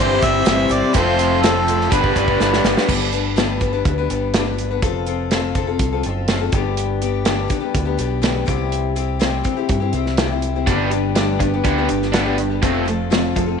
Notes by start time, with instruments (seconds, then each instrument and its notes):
Already playing: harmonica C5
0.00 fingered electric bass G1, steel-string acoustic guitar G2 E3 G3 C4 E4 G4, tonewheel organ G4 C5 E5 C6, overdriven electric guitar C5
0.11 steel-string acoustic guitar G3 C4 E4 G4
0.21 fingered electric bass G1, steel-string acoustic guitar G3 C4, harmonica E5, kick, snare, closed hi-hat, shaker
0.26 steel-string acoustic guitar E4 G4
0.36 steel-string acoustic guitar G3 C4 E4 G4
0.45 fingered electric bass G1, steel-string acoustic guitar G2 E3 G3 C4, snare, closed hi-hat, shaker
0.49 steel-string acoustic guitar E4 G4
0.69 fingered electric bass G1, steel-string acoustic guitar G3, closed hi-hat, shaker
0.73 steel-string acoustic guitar C4 E4 G4, harmonica D5
0.83 steel-string acoustic guitar G3 C4 E4 G4
0.94 fingered electric bass F1, steel-string acoustic guitar F3 C4, overdriven electric guitar A3, tonewheel organ A4 F5, harmonica C5, kick, closed hi-hat, shaker
0.98 steel-string acoustic guitar F4 A4
1.19 closed hi-hat, shaker
1.42 steel-string acoustic guitar F3 C4 F4 A4, harmonica A4, snare, closed hi-hat, shaker
1.68 steel-string acoustic guitar F3 C4 F4 A4, closed hi-hat, shaker
1.81 snare
1.90 fingered electric bass G1, steel-string acoustic guitar G2 D3 G3 B3 D4 B4, tonewheel organ B4 D5 G5 D6, harmonica B4, kick, closed hi-hat, shaker
2.04 steel-string acoustic guitar G3 B3 D4 B4, kick
2.15 fingered electric bass G1, steel-string acoustic guitar G3 B3 D4 B4, kick, closed hi-hat
2.28 steel-string acoustic guitar G3 B3 D4 B4, kick
2.40 fingered electric bass G1, steel-string acoustic guitar G2 D3 G3 B3 D4 B4, snare, shaker
2.53 snare
2.64 fingered electric bass G1, steel-string acoustic guitar G3 B3 D4 B4, snare, shaker
2.76 steel-string acoustic guitar G3 B3 D4 B4, snare
2.88 fingered electric bass G1, steel-string acoustic guitar G2 D3 G3 B3 D4 B4, kick, crash
3.12 steel-string acoustic guitar G3 B3 D4 B4, closed hi-hat
3.36 steel-string acoustic guitar G2 D3 G3 B3 D4 B4, snare, closed hi-hat
3.60 steel-string acoustic guitar G3 B3 D4 B4, kick, closed hi-hat
3.73 steel-string acoustic guitar G3 B3 D4 B4
3.85 fingered electric bass D2, kick, closed hi-hat
3.98 steel-string acoustic guitar G3 B3 D4 B4
4.10 fingered electric bass G1, steel-string acoustic guitar G3 B3 D4 B4, closed hi-hat
4.34 steel-string acoustic guitar G2 D3 G3 B3 D4 B4, snare, closed hi-hat
4.46 steel-string acoustic guitar G3 B3 D4 B4
4.58 closed hi-hat
4.71 steel-string acoustic guitar G3 B3 D4 B4
4.82 fingered electric bass F1, steel-string acoustic guitar F3 C4 F4 A4, kick, closed hi-hat
5.06 steel-string acoustic guitar F3 C4 F4 A4, closed hi-hat
5.31 steel-string acoustic guitar F3 C4 F4 A4, snare, closed hi-hat
5.55 steel-string acoustic guitar F3 C4 F4 A4, kick, closed hi-hat
5.67 steel-string acoustic guitar C4 F4 A4
5.79 fingered electric bass C2, kick, closed hi-hat
5.92 steel-string acoustic guitar C4 F4 A4
6.03 fingered electric bass F#1, steel-string acoustic guitar F3 C4 F4 A4, closed hi-hat
6.28 steel-string acoustic guitar F3 C4 F4 A4, snare, closed hi-hat
6.41 steel-string acoustic guitar C4 F4 A4
6.52 fingered electric bass G1, steel-string acoustic guitar G2 D3 G3 B3 D4 G4, kick, closed hi-hat
6.77 closed hi-hat
7.02 steel-string acoustic guitar G3 B3 D4 G4, closed hi-hat
7.25 steel-string acoustic guitar G2 D3 G3 B3 D4 G4, snare, closed hi-hat
7.48 steel-string acoustic guitar G3 B3 D4 G4, kick, closed hi-hat
7.60 steel-string acoustic guitar G3 B3 D4 G4
7.75 fingered electric bass D2, kick, closed hi-hat
7.85 steel-string acoustic guitar G3 B3 D4 G4
7.97 fingered electric bass B1, steel-string acoustic guitar G3 B3 D4 G4, closed hi-hat
8.22 steel-string acoustic guitar G2 D3 G3 B3 D4 G4, snare, closed hi-hat
8.35 steel-string acoustic guitar G3 B3 D4 G4
8.46 fingered electric bass C2, steel-string acoustic guitar C3 G3 C4 E4 G4, kick, closed hi-hat
8.72 closed hi-hat
8.96 steel-string acoustic guitar G3 C4 E4 G4, closed hi-hat
9.19 steel-string acoustic guitar C3 G3 C4 E4 G4, snare, closed hi-hat
9.43 steel-string acoustic guitar G3 C4 E4 G4, kick, closed hi-hat
9.57 steel-string acoustic guitar C4 E4 G4
9.69 fingered electric bass G2, kick, closed hi-hat
9.80 steel-string acoustic guitar C4 E4 G4
9.93 fingered electric bass C2, steel-string acoustic guitar G3 C4 E4 G4, closed hi-hat
10.06 snare
10.17 steel-string acoustic guitar C3 G3 C4 E4 G4, snare, closed hi-hat
10.31 steel-string acoustic guitar C4 E4 G4
10.42 closed hi-hat
10.55 steel-string acoustic guitar C4 E4 G4
10.67 fingered electric bass G1, steel-string acoustic guitar G2 D3 G3 B3 D4 G4, kick, closed hi-hat
10.91 steel-string acoustic guitar G3 B3 D4 G4, closed hi-hat
11.15 steel-string acoustic guitar G2 D3 G3 B3 D4 G4, snare, closed hi-hat
11.40 steel-string acoustic guitar G3 B3 D4 G4, kick, closed hi-hat
11.53 steel-string acoustic guitar G3 B3 D4 G4
11.64 fingered electric bass D2, overdriven electric guitar G3 B3 D4, kick, closed hi-hat
11.77 steel-string acoustic guitar G3 B3 D4 G4
11.89 fingered electric bass G1, steel-string acoustic guitar G3 B3 D4 G4, closed hi-hat
12.02 snare
12.13 steel-string acoustic guitar G2 D3 G3 B3 D4 G4, snare, closed hi-hat
12.24 steel-string acoustic guitar G3 B3 D4 G4
12.38 overdriven electric guitar G3 D4, closed hi-hat
12.50 steel-string acoustic guitar G3 B3 D4 G4
12.62 fingered electric bass F1, steel-string acoustic guitar F3 C4 F4 A4, overdriven electric guitar A3, kick, closed hi-hat
12.85 steel-string acoustic guitar F3 C4 F4 A4, overdriven electric guitar A3, closed hi-hat
13.10 steel-string acoustic guitar F3 C4 F4 A4, overdriven electric guitar A3, snare, closed hi-hat
13.35 steel-string acoustic guitar F3 C4 F4 A4, overdriven electric guitar A3, kick, closed hi-hat
13.46 steel-string acoustic guitar C4 F4 A4